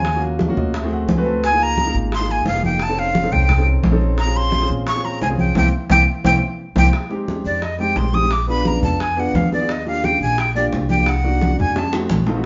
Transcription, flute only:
Already playing: G#5
1.45 G#5
1.63 A#5
2.15 C6
2.31 G#5
2.47 F5
2.65 G5
2.83 A5
2.99 F5
3.32 G5
4.19 A#5
4.37 C6
4.88 C#6
5.05 A#5
5.22 G#5
5.39 G5
5.58 G5
5.91 G5
6.26 G5
6.78 G5
7.46 D5
7.63 D#5
7.79 G5
7.97 C6
8.14 D#6
8.32 D6
8.49 B5
8.67 A#5
8.83 A5
9.01 G#5
9.20 F#5
9.36 F5
9.53 D5
9.71 D#5
9.88 F5
10.05 G5
10.22 G#5
10.39 G5
10.56 D5
10.90 G5
11.09 F#5
11.60 G#5
11.78 A5

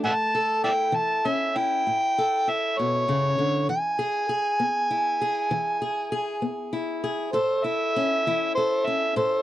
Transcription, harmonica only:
0.05 E5 F#5 A5
0.64 D5 E5 G5
0.96 A5
1.27 E5
1.57 G5
2.50 E5
2.78 C#5
3.70 G#5
7.33 C5
7.64 E5
8.55 C5
8.86 E5
9.17 C5

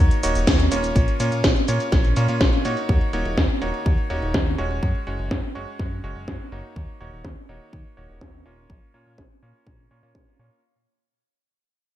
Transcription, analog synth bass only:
0.24 D#1
0.35 D#1
0.47 D#2
0.72 D#1
0.96 A#1
1.20 A#2
1.32 A#2
1.44 A#1
1.68 A#2
1.92 A#1
2.17 A#2
2.29 A#2
2.41 A#1
2.65 A#2
2.89 D#2
3.14 D#1
3.26 D#1
3.38 D#2
3.62 D#1
3.86 D#2
4.10 D#1
4.23 D#1
4.34 D#2
4.59 D#1
4.83 F#2
5.07 F#1
5.19 F#1
5.31 F#2
5.56 F#1
5.80 F#2
6.04 F#1
6.16 F#1
6.28 F#2
6.52 F#1
6.76 D#2
7.00 D#1
7.13 D#1
7.25 D#2
7.49 D#1
7.73 D#2
7.97 D#1
8.10 D#1
8.21 D#2
8.46 D#1
8.70 A#1
8.94 A#2
9.06 A#2
9.18 A#1
9.42 A#2
9.67 A#1
9.91 A#2
10.03 A#2
10.15 A#1
10.39 A#2

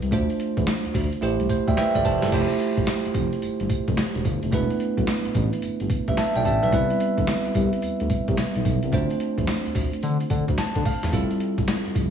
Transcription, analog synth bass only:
0.03 C2
0.12 D2
0.57 E2
0.85 D2
0.95 D2
1.22 A1
1.40 C2
1.68 D2
1.95 G1
2.05 F1
2.23 G1
2.32 F1
2.77 G1
3.06 F1
3.15 F1
3.43 G1
3.60 G1
3.88 F1
4.15 E1
4.25 G1
4.43 F1
4.53 E1
4.98 B1
5.26 A1
5.35 A1
5.63 G1
5.81 G1
6.08 A1
6.35 B1
6.45 A1
6.63 B1
6.73 C2
7.18 D2
7.46 C2
7.55 C2
7.83 D2
8.01 D2
8.28 C2
8.56 B1
8.65 B1
8.83 C2
8.93 D2
9.38 E2
9.66 D2
9.75 D2
10.03 D3
10.30 D3
10.49 D2
10.76 D3
11.03 E2
11.13 F1
11.58 G1
11.86 F1
11.95 F1

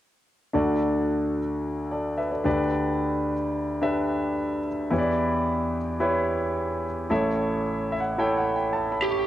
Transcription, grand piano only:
0.53 D2 D3 D4 F#4 A4 D5
1.91 A4 D5
2.18 B4 E5
2.31 A4 D5
2.44 D2 D3 D4 G4 B4 D5
3.81 D4 G4 B4 E5
4.91 E2 E3 E4 G4 B4 C#5
4.98 D5
6.00 E4 G4 B4 C#5
7.10 A1 A2 E4 A4 C#5 E5
7.92 E5
8.00 F#5
8.18 E4 A4 C#5 E5 G5
8.37 F#5
8.56 G5
8.73 A5
8.92 B5
9.11 C#6

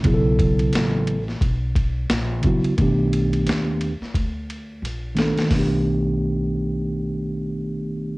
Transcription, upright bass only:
0.05 B1
0.74 A1
1.41 B1
2.10 A#1
2.65 muted upright bass stroke
2.78 B1
3.46 D#2
4.01 muted upright bass stroke
4.15 D2
4.82 A#1
5.37 muted upright bass stroke
5.51 B1

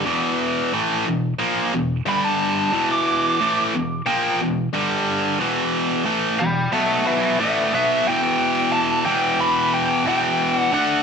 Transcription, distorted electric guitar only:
0.05 E2 B2 E3
0.73 A2 E3 A3
1.06 E2 B2
1.39 A#2 F3 A#3
1.73 E2 B2
2.06 G2 D3 G3
2.73 E2 B2 E3
3.40 A2 E3 A3
3.73 E2 B2
4.06 A#2 F3 A#3
4.41 E2 B2
4.73 G2 D3 G3
5.39 E2 B2 E3
6.06 A2 E3 A3
6.40 E2 B2
6.73 B2 F#3 B3
7.40 A2 E3 A3
7.73 B2 F#3 B3
8.06 E2 B2 E3
9.06 E2 B2 E3
10.05 E2 B2 E3
10.72 D3 A3 D4

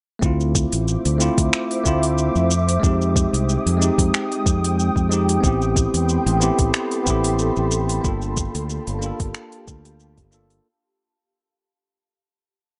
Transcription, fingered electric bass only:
0.22 D2
0.73 A1
1.06 D2
1.38 D2
1.85 D2
2.35 F2
2.83 F2
3.33 C2
3.66 F2
3.98 F2
4.46 F2
4.96 F2
5.43 A1
5.94 E2
6.26 A1
6.59 A1
7.06 A1
7.57 A1
8.04 G1
8.55 D2
8.87 G1
9.20 G1
9.67 D2
10.18 G1

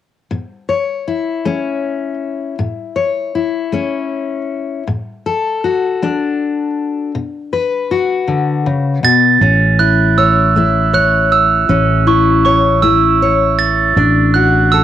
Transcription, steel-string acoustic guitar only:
0.31 A2
0.69 C#5
1.08 E4
1.45 A3 C#4
2.59 A2
2.96 C#5
3.35 E4
3.72 A3 C#4
4.87 A2
5.26 A4
5.64 F#4
6.02 A3 D4
7.15 B2
7.53 B4
7.91 F#4
8.27 D3
8.66 C#3
9.03 B2
9.41 A2 C#4
9.79 E4
10.18 C#5
10.56 A3 E4
10.94 C#5
11.69 A2 C#4
12.07 E4
12.45 C#5
12.83 A3 E4
13.22 C#5
13.97 A2 D4
14.35 F#4
14.74 A4

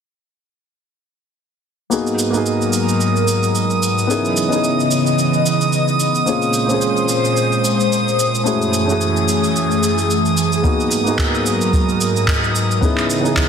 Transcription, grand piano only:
1.90 A#3 B3 D#4 F#4 G#4
2.30 A#3 B3 D#4
2.35 F#4 G#4
4.07 B3 C#4 D#4 E4 G#4
4.48 B3 C#4 D#4
4.53 E4 G#4
6.26 A#3 C4 C#4 F4 G#4
6.66 A#3 C4 C#4
6.71 F4 G#4
8.44 A3 C#4 E4 F#4 G#4
8.85 A3 C#4 E4
8.90 F#4 G#4
10.62 A#3 B3 D#4 F#4 G#4
11.03 A#3 B3 D#4
11.08 F#4 G#4
12.81 B3 C#4 D#4 E4 G#4
13.21 B3 C#4 D#4
13.26 E4 G#4

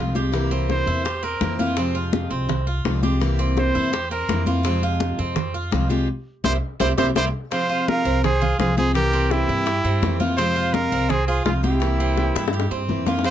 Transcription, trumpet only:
0.71 C5
1.24 A#4
3.59 C5
4.11 A#4
6.44 C5
6.80 C5
6.98 C5
7.17 C5
7.52 C5
7.88 A#4
8.24 G#4
8.59 G#4
8.77 G#4
8.94 G4
9.31 E4
10.37 C5
10.73 A#4
11.10 G#4
11.27 G#4
11.45 F4
11.64 E4
13.26 C5

